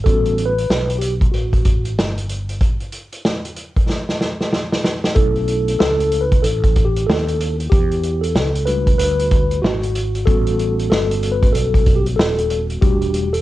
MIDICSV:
0, 0, Header, 1, 4, 480
1, 0, Start_track
1, 0, Tempo, 638298
1, 43, Time_signature, 4, 2, 24, 8
1, 10088, End_track
2, 0, Start_track
2, 0, Title_t, "Tine electric piano"
2, 0, Program_c, 0, 4
2, 30, Note_on_c, 0, 69, 109
2, 37, Note_on_c, 0, 55, 57
2, 42, Note_on_c, 0, 59, 54
2, 43, Note_on_c, 0, 61, 58
2, 48, Note_on_c, 0, 66, 61
2, 333, Note_off_c, 0, 69, 0
2, 343, Note_on_c, 0, 71, 95
2, 381, Note_off_c, 0, 55, 0
2, 384, Note_off_c, 0, 59, 0
2, 385, Note_off_c, 0, 61, 0
2, 387, Note_off_c, 0, 66, 0
2, 724, Note_off_c, 0, 71, 0
2, 743, Note_on_c, 0, 67, 81
2, 855, Note_off_c, 0, 67, 0
2, 991, Note_on_c, 0, 66, 70
2, 1447, Note_off_c, 0, 66, 0
2, 3872, Note_on_c, 0, 69, 117
2, 3877, Note_on_c, 0, 57, 58
2, 3885, Note_on_c, 0, 61, 51
2, 3888, Note_on_c, 0, 64, 62
2, 4344, Note_off_c, 0, 69, 0
2, 4353, Note_on_c, 0, 69, 102
2, 4668, Note_on_c, 0, 71, 91
2, 4688, Note_off_c, 0, 69, 0
2, 4831, Note_on_c, 0, 69, 95
2, 4840, Note_off_c, 0, 71, 0
2, 5149, Note_on_c, 0, 67, 89
2, 5167, Note_off_c, 0, 69, 0
2, 5313, Note_on_c, 0, 69, 103
2, 5321, Note_off_c, 0, 67, 0
2, 5680, Note_off_c, 0, 69, 0
2, 5770, Note_off_c, 0, 57, 0
2, 5774, Note_off_c, 0, 61, 0
2, 5775, Note_off_c, 0, 64, 0
2, 5789, Note_on_c, 0, 67, 96
2, 6176, Note_on_c, 0, 69, 87
2, 6197, Note_off_c, 0, 67, 0
2, 6510, Note_on_c, 0, 71, 89
2, 6517, Note_on_c, 0, 55, 49
2, 6520, Note_on_c, 0, 57, 51
2, 6523, Note_on_c, 0, 62, 44
2, 6525, Note_off_c, 0, 69, 0
2, 6526, Note_on_c, 0, 66, 50
2, 6746, Note_off_c, 0, 71, 0
2, 6755, Note_on_c, 0, 71, 101
2, 7209, Note_off_c, 0, 71, 0
2, 7210, Note_off_c, 0, 55, 0
2, 7211, Note_off_c, 0, 57, 0
2, 7213, Note_off_c, 0, 62, 0
2, 7214, Note_off_c, 0, 66, 0
2, 7235, Note_on_c, 0, 66, 93
2, 7714, Note_on_c, 0, 69, 113
2, 7717, Note_off_c, 0, 66, 0
2, 7719, Note_on_c, 0, 55, 61
2, 7723, Note_on_c, 0, 59, 59
2, 7723, Note_on_c, 0, 61, 54
2, 7726, Note_on_c, 0, 66, 69
2, 8168, Note_off_c, 0, 69, 0
2, 8196, Note_on_c, 0, 69, 97
2, 8510, Note_on_c, 0, 71, 87
2, 8529, Note_off_c, 0, 69, 0
2, 8665, Note_off_c, 0, 71, 0
2, 8667, Note_on_c, 0, 69, 100
2, 8991, Note_on_c, 0, 67, 86
2, 9005, Note_off_c, 0, 69, 0
2, 9066, Note_off_c, 0, 67, 0
2, 9147, Note_on_c, 0, 69, 103
2, 9516, Note_off_c, 0, 69, 0
2, 9611, Note_off_c, 0, 55, 0
2, 9613, Note_off_c, 0, 59, 0
2, 9613, Note_off_c, 0, 61, 0
2, 9614, Note_off_c, 0, 66, 0
2, 9637, Note_on_c, 0, 67, 96
2, 9639, Note_on_c, 0, 55, 63
2, 9646, Note_on_c, 0, 57, 54
2, 9646, Note_on_c, 0, 62, 58
2, 9649, Note_on_c, 0, 66, 67
2, 9982, Note_off_c, 0, 55, 0
2, 9986, Note_off_c, 0, 57, 0
2, 9986, Note_off_c, 0, 62, 0
2, 9988, Note_off_c, 0, 66, 0
2, 10025, Note_on_c, 0, 69, 97
2, 10041, Note_off_c, 0, 67, 0
2, 10088, Note_off_c, 0, 69, 0
2, 10088, End_track
3, 0, Start_track
3, 0, Title_t, "Fretless electric bass"
3, 0, Program_c, 1, 35
3, 44, Note_on_c, 1, 33, 103
3, 499, Note_off_c, 1, 33, 0
3, 524, Note_on_c, 1, 35, 76
3, 980, Note_off_c, 1, 35, 0
3, 1006, Note_on_c, 1, 33, 82
3, 1489, Note_off_c, 1, 33, 0
3, 1489, Note_on_c, 1, 31, 82
3, 1942, Note_off_c, 1, 31, 0
3, 3882, Note_on_c, 1, 35, 103
3, 4338, Note_off_c, 1, 35, 0
3, 4363, Note_on_c, 1, 37, 77
3, 4819, Note_off_c, 1, 37, 0
3, 4842, Note_on_c, 1, 33, 93
3, 5298, Note_off_c, 1, 33, 0
3, 5323, Note_on_c, 1, 39, 81
3, 5779, Note_off_c, 1, 39, 0
3, 5804, Note_on_c, 1, 40, 96
3, 6280, Note_on_c, 1, 37, 84
3, 6291, Note_off_c, 1, 40, 0
3, 6737, Note_off_c, 1, 37, 0
3, 6760, Note_on_c, 1, 38, 77
3, 7217, Note_off_c, 1, 38, 0
3, 7240, Note_on_c, 1, 32, 89
3, 7697, Note_off_c, 1, 32, 0
3, 7723, Note_on_c, 1, 33, 94
3, 8179, Note_off_c, 1, 33, 0
3, 8198, Note_on_c, 1, 31, 83
3, 8656, Note_off_c, 1, 31, 0
3, 8679, Note_on_c, 1, 35, 87
3, 9137, Note_off_c, 1, 35, 0
3, 9157, Note_on_c, 1, 27, 82
3, 9616, Note_off_c, 1, 27, 0
3, 9640, Note_on_c, 1, 28, 98
3, 10088, Note_off_c, 1, 28, 0
3, 10088, End_track
4, 0, Start_track
4, 0, Title_t, "Drums"
4, 45, Note_on_c, 9, 36, 104
4, 45, Note_on_c, 9, 42, 78
4, 120, Note_off_c, 9, 36, 0
4, 120, Note_off_c, 9, 42, 0
4, 192, Note_on_c, 9, 42, 42
4, 267, Note_off_c, 9, 42, 0
4, 285, Note_on_c, 9, 42, 52
4, 361, Note_off_c, 9, 42, 0
4, 439, Note_on_c, 9, 42, 50
4, 514, Note_off_c, 9, 42, 0
4, 530, Note_on_c, 9, 38, 92
4, 605, Note_off_c, 9, 38, 0
4, 676, Note_on_c, 9, 42, 53
4, 751, Note_off_c, 9, 42, 0
4, 763, Note_on_c, 9, 42, 70
4, 838, Note_off_c, 9, 42, 0
4, 912, Note_on_c, 9, 36, 103
4, 916, Note_on_c, 9, 42, 48
4, 988, Note_off_c, 9, 36, 0
4, 991, Note_off_c, 9, 42, 0
4, 1006, Note_on_c, 9, 42, 90
4, 1081, Note_off_c, 9, 42, 0
4, 1151, Note_on_c, 9, 36, 87
4, 1153, Note_on_c, 9, 42, 50
4, 1226, Note_off_c, 9, 36, 0
4, 1229, Note_off_c, 9, 42, 0
4, 1240, Note_on_c, 9, 42, 81
4, 1244, Note_on_c, 9, 36, 90
4, 1315, Note_off_c, 9, 42, 0
4, 1319, Note_off_c, 9, 36, 0
4, 1392, Note_on_c, 9, 42, 47
4, 1467, Note_off_c, 9, 42, 0
4, 1495, Note_on_c, 9, 38, 115
4, 1570, Note_off_c, 9, 38, 0
4, 1637, Note_on_c, 9, 42, 52
4, 1713, Note_off_c, 9, 42, 0
4, 1725, Note_on_c, 9, 42, 62
4, 1801, Note_off_c, 9, 42, 0
4, 1873, Note_on_c, 9, 42, 45
4, 1949, Note_off_c, 9, 42, 0
4, 1962, Note_on_c, 9, 42, 65
4, 1963, Note_on_c, 9, 36, 100
4, 2037, Note_off_c, 9, 42, 0
4, 2038, Note_off_c, 9, 36, 0
4, 2109, Note_on_c, 9, 42, 35
4, 2184, Note_off_c, 9, 42, 0
4, 2199, Note_on_c, 9, 42, 56
4, 2274, Note_off_c, 9, 42, 0
4, 2352, Note_on_c, 9, 42, 52
4, 2427, Note_off_c, 9, 42, 0
4, 2445, Note_on_c, 9, 38, 108
4, 2520, Note_off_c, 9, 38, 0
4, 2594, Note_on_c, 9, 42, 50
4, 2669, Note_off_c, 9, 42, 0
4, 2679, Note_on_c, 9, 42, 62
4, 2755, Note_off_c, 9, 42, 0
4, 2831, Note_on_c, 9, 36, 99
4, 2831, Note_on_c, 9, 42, 52
4, 2906, Note_off_c, 9, 36, 0
4, 2906, Note_off_c, 9, 42, 0
4, 2928, Note_on_c, 9, 38, 54
4, 3003, Note_off_c, 9, 38, 0
4, 3075, Note_on_c, 9, 38, 50
4, 3150, Note_off_c, 9, 38, 0
4, 3165, Note_on_c, 9, 38, 63
4, 3240, Note_off_c, 9, 38, 0
4, 3314, Note_on_c, 9, 38, 56
4, 3389, Note_off_c, 9, 38, 0
4, 3405, Note_on_c, 9, 38, 79
4, 3480, Note_off_c, 9, 38, 0
4, 3554, Note_on_c, 9, 38, 71
4, 3629, Note_off_c, 9, 38, 0
4, 3643, Note_on_c, 9, 38, 87
4, 3719, Note_off_c, 9, 38, 0
4, 3791, Note_on_c, 9, 38, 81
4, 3866, Note_off_c, 9, 38, 0
4, 3877, Note_on_c, 9, 42, 66
4, 3881, Note_on_c, 9, 36, 93
4, 3953, Note_off_c, 9, 42, 0
4, 3957, Note_off_c, 9, 36, 0
4, 4028, Note_on_c, 9, 42, 42
4, 4103, Note_off_c, 9, 42, 0
4, 4119, Note_on_c, 9, 42, 57
4, 4194, Note_off_c, 9, 42, 0
4, 4271, Note_on_c, 9, 42, 49
4, 4346, Note_off_c, 9, 42, 0
4, 4363, Note_on_c, 9, 38, 115
4, 4438, Note_off_c, 9, 38, 0
4, 4513, Note_on_c, 9, 42, 50
4, 4588, Note_off_c, 9, 42, 0
4, 4599, Note_on_c, 9, 42, 69
4, 4674, Note_off_c, 9, 42, 0
4, 4751, Note_on_c, 9, 36, 105
4, 4752, Note_on_c, 9, 42, 57
4, 4826, Note_off_c, 9, 36, 0
4, 4827, Note_off_c, 9, 42, 0
4, 4842, Note_on_c, 9, 42, 98
4, 4917, Note_off_c, 9, 42, 0
4, 4990, Note_on_c, 9, 36, 102
4, 4993, Note_on_c, 9, 42, 52
4, 5065, Note_off_c, 9, 36, 0
4, 5068, Note_off_c, 9, 42, 0
4, 5081, Note_on_c, 9, 42, 78
4, 5085, Note_on_c, 9, 36, 92
4, 5156, Note_off_c, 9, 42, 0
4, 5160, Note_off_c, 9, 36, 0
4, 5235, Note_on_c, 9, 42, 54
4, 5310, Note_off_c, 9, 42, 0
4, 5335, Note_on_c, 9, 38, 109
4, 5410, Note_off_c, 9, 38, 0
4, 5476, Note_on_c, 9, 42, 52
4, 5552, Note_off_c, 9, 42, 0
4, 5568, Note_on_c, 9, 42, 77
4, 5644, Note_off_c, 9, 42, 0
4, 5714, Note_on_c, 9, 42, 44
4, 5790, Note_off_c, 9, 42, 0
4, 5805, Note_on_c, 9, 36, 112
4, 5806, Note_on_c, 9, 42, 72
4, 5880, Note_off_c, 9, 36, 0
4, 5881, Note_off_c, 9, 42, 0
4, 5952, Note_on_c, 9, 42, 41
4, 6027, Note_off_c, 9, 42, 0
4, 6042, Note_on_c, 9, 42, 54
4, 6117, Note_off_c, 9, 42, 0
4, 6194, Note_on_c, 9, 42, 54
4, 6269, Note_off_c, 9, 42, 0
4, 6285, Note_on_c, 9, 38, 105
4, 6360, Note_off_c, 9, 38, 0
4, 6433, Note_on_c, 9, 42, 53
4, 6508, Note_off_c, 9, 42, 0
4, 6519, Note_on_c, 9, 42, 73
4, 6594, Note_off_c, 9, 42, 0
4, 6670, Note_on_c, 9, 36, 100
4, 6670, Note_on_c, 9, 42, 58
4, 6745, Note_off_c, 9, 42, 0
4, 6746, Note_off_c, 9, 36, 0
4, 6763, Note_on_c, 9, 42, 106
4, 6838, Note_off_c, 9, 42, 0
4, 6914, Note_on_c, 9, 42, 58
4, 6989, Note_off_c, 9, 42, 0
4, 7001, Note_on_c, 9, 42, 73
4, 7004, Note_on_c, 9, 36, 98
4, 7077, Note_off_c, 9, 42, 0
4, 7079, Note_off_c, 9, 36, 0
4, 7152, Note_on_c, 9, 42, 48
4, 7227, Note_off_c, 9, 42, 0
4, 7253, Note_on_c, 9, 38, 118
4, 7328, Note_off_c, 9, 38, 0
4, 7395, Note_on_c, 9, 42, 51
4, 7470, Note_off_c, 9, 42, 0
4, 7485, Note_on_c, 9, 42, 79
4, 7560, Note_off_c, 9, 42, 0
4, 7632, Note_on_c, 9, 42, 47
4, 7708, Note_off_c, 9, 42, 0
4, 7723, Note_on_c, 9, 36, 105
4, 7725, Note_on_c, 9, 42, 73
4, 7798, Note_off_c, 9, 36, 0
4, 7800, Note_off_c, 9, 42, 0
4, 7871, Note_on_c, 9, 42, 46
4, 7946, Note_off_c, 9, 42, 0
4, 7965, Note_on_c, 9, 42, 57
4, 8041, Note_off_c, 9, 42, 0
4, 8116, Note_on_c, 9, 42, 50
4, 8192, Note_off_c, 9, 42, 0
4, 8209, Note_on_c, 9, 38, 107
4, 8284, Note_off_c, 9, 38, 0
4, 8355, Note_on_c, 9, 42, 53
4, 8430, Note_off_c, 9, 42, 0
4, 8442, Note_on_c, 9, 42, 73
4, 8517, Note_off_c, 9, 42, 0
4, 8592, Note_on_c, 9, 36, 103
4, 8593, Note_on_c, 9, 42, 59
4, 8667, Note_off_c, 9, 36, 0
4, 8668, Note_off_c, 9, 42, 0
4, 8684, Note_on_c, 9, 42, 95
4, 8759, Note_off_c, 9, 42, 0
4, 8830, Note_on_c, 9, 36, 94
4, 8835, Note_on_c, 9, 42, 54
4, 8905, Note_off_c, 9, 36, 0
4, 8911, Note_off_c, 9, 42, 0
4, 8920, Note_on_c, 9, 42, 80
4, 8923, Note_on_c, 9, 36, 96
4, 8995, Note_off_c, 9, 42, 0
4, 8998, Note_off_c, 9, 36, 0
4, 9071, Note_on_c, 9, 42, 50
4, 9146, Note_off_c, 9, 42, 0
4, 9170, Note_on_c, 9, 38, 117
4, 9245, Note_off_c, 9, 38, 0
4, 9314, Note_on_c, 9, 42, 52
4, 9389, Note_off_c, 9, 42, 0
4, 9402, Note_on_c, 9, 42, 77
4, 9477, Note_off_c, 9, 42, 0
4, 9549, Note_on_c, 9, 42, 46
4, 9625, Note_off_c, 9, 42, 0
4, 9642, Note_on_c, 9, 42, 75
4, 9643, Note_on_c, 9, 36, 115
4, 9717, Note_off_c, 9, 42, 0
4, 9718, Note_off_c, 9, 36, 0
4, 9788, Note_on_c, 9, 42, 39
4, 9864, Note_off_c, 9, 42, 0
4, 9881, Note_on_c, 9, 42, 60
4, 9956, Note_off_c, 9, 42, 0
4, 10031, Note_on_c, 9, 42, 54
4, 10088, Note_off_c, 9, 42, 0
4, 10088, End_track
0, 0, End_of_file